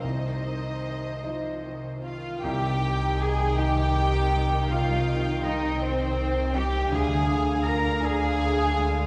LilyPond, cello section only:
\new Staff \with { instrumentName = "Cello section" } { \time 6/8 \key c \minor \tempo 4. = 53 c2~ c8 f'8 | g'4 aes'8 g'4. | f'4 ees'8 c'4 g'8 | aes'4 bes'8 aes'4. | }